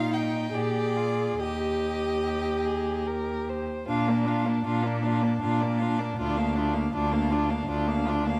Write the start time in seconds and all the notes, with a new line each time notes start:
Already playing: A#2 D#4 F4 F5
0.13 D#4 G5
0.53 A#2 G4 G#4 D5
0.96 F4
1.40 D#2 G4 D#5
2.24 G4
2.65 G#4
3.07 A#4
3.49 C5
3.88 A#2 D4 F4 F5
4.08 A#3 D4 D5
4.26 D4 F4 F5
4.46 A#3 D4 D5
4.65 A#2 D4 F4 F5
4.83 A#3 D4 D5
5.03 D4 F4 F5
5.21 A#3 D4 D5
5.41 A#2 D4 F4 F5
5.60 A#3 D4 D5
5.78 D4 F4 F5
5.99 A#3 D4 D5
6.18 D2 D4 F4 D5
6.36 A#3 D4 F5
6.54 D4 F4 D5
6.73 A#3 D4 F5
6.93 D2 D4 F4 D5
7.12 A#3 D4 F5
7.30 D4 F4 D5
7.50 A#3 D4 F5
7.68 D2 D4 F4 D5
7.87 A#3 D4 F5
8.06 D4 F4 D5
8.25 A#3 D4 F5